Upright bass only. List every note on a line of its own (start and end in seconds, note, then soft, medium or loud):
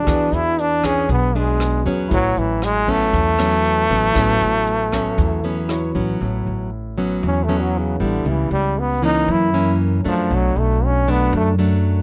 0.07 0.31 E2 medium
0.32 1.05 E2 medium
1.09 1.82 B1 loud
1.86 2.10 E2 medium
2.11 2.35 A1 medium
2.37 3.10 A1 medium
3.14 3.86 E2 loud
3.90 4.14 A1 medium
4.16 4.40 A1 medium
4.42 5.14 A1 medium
5.18 5.91 E2 loud
5.95 6.19 A1 medium
6.21 6.45 A1 medium
6.46 7.19 A1 medium
7.23 7.96 E2 loud
8.00 8.23 A1 medium
8.25 8.49 C#2 medium
8.51 9.24 C#2 medium
9.28 10.01 F#2 loud
10.05 10.29 F#2 medium
10.30 10.54 B1 medium
10.56 11.29 B1 medium
11.33 12.02 F#2 loud